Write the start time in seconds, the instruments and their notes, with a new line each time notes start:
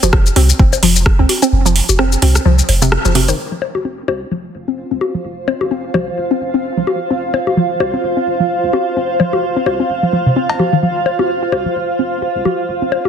0.03 sub bass F1, synth arpeggio sound F3, low bongo, shaker
0.13 kick, cross-stick, high bongo
0.26 shaker
0.36 sub bass C2, synth arpeggio sound C4, open hi-hat, low bongo
0.49 shaker
0.59 sub bass F1, synth arpeggio sound C4, kick
0.73 high bongo, shaker
0.83 sub bass F1, synth arpeggio sound F3, open hi-hat
0.96 shaker
1.06 kick, cross-stick
1.19 sub bass C2, synth arpeggio sound C4
1.29 open hi-hat, low bongo
1.42 synth arpeggio sound C4, high bongo, shaker
1.53 sub bass F1
1.66 synth arpeggio sound F3, shaker
1.76 open hi-hat
1.89 sub bass F1, low bongo, shaker
1.99 synth arpeggio sound C4, cross-stick, high bongo
2.12 shaker
2.22 sub bass C2, synth arpeggio sound C4, open hi-hat, low bongo
2.35 cross-stick, shaker
2.45 sub bass C2, synth arpeggio sound F3
2.59 shaker
2.69 sub bass F1, open hi-hat, high bongo
2.82 synth arpeggio sound C3, shaker
2.92 cross-stick
3.05 sub bass F1, synth arpeggio sound F3, shaker
3.15 synth arpeggio sound C3, open hi-hat, low bongo
3.28 synth arpeggio sound D#3, open hi-hat, high bongo, shaker
3.38 sub bass F1, ambient pad F4
3.52 synth arpeggio sound F3
3.62 high bongo
3.75 sub bass F1, low bongo
3.85 synth arpeggio sound C4, ambient pad C5
4.08 sub bass C2, synth arpeggio sound C4, high bongo, low bongo
4.31 sub bass F1, synth arpeggio sound F3
4.45 ambient pad F5
4.55 sub bass F1
4.68 synth arpeggio sound C4
4.91 sub bass C2, synth arpeggio sound C4
5.01 low bongo
5.15 synth arpeggio sound F3
5.25 sub bass F1
5.48 synth arpeggio sound C4, high bongo
5.61 sub bass F1, low bongo
5.71 synth arpeggio sound C4
5.94 sub bass C2, synth arpeggio sound F3, high bongo, low bongo
6.18 sub bass F1
6.31 synth arpeggio sound C4
6.41 sub bass F1
6.54 synth arpeggio sound C4
6.77 sub bass C2, synth arpeggio sound F3
6.87 low bongo
7.11 sub bass F1, synth arpeggio sound C4
7.34 synth arpeggio sound C4, high bongo
7.47 sub bass F1, low bongo
7.57 synth arpeggio sound F3
7.80 sub bass C2, high bongo, low bongo
7.94 synth arpeggio sound C4
8.03 sub bass F1
8.17 synth arpeggio sound C4
8.27 sub bass F1
8.40 synth arpeggio sound F3
8.63 sub bass C2
8.73 synth arpeggio sound C4, low bongo
8.97 sub bass F1, synth arpeggio sound C4
9.20 synth arpeggio sound F3, high bongo
9.33 sub bass F1, low bongo
9.56 synth arpeggio sound C4
9.66 sub bass C2, high bongo, low bongo
9.80 synth arpeggio sound C4
9.90 sub bass F1
10.03 synth arpeggio sound F3
10.13 sub bass F1, synth arpeggio sound F3
10.26 synth arpeggio sound C3
10.36 synth arpeggio sound C4
10.49 sub bass F1, cowbell
10.59 synth arpeggio sound F3, low bongo
10.73 synth arpeggio sound D#3
10.83 sub bass F1, synth arpeggio sound F3
11.06 high bongo
11.19 sub bass F1, synth arpeggio sound C4, low bongo
11.43 synth arpeggio sound F4
11.52 sub bass C2, high bongo, low bongo
11.66 synth arpeggio sound F3
11.76 sub bass F1
11.99 sub bass F1, synth arpeggio sound C4
12.22 synth arpeggio sound F4
12.35 sub bass C2
12.45 synth arpeggio sound F3, low bongo
12.69 sub bass F1
12.82 synth arpeggio sound C4
12.92 high bongo
13.05 sub bass F1, synth arpeggio sound F4, low bongo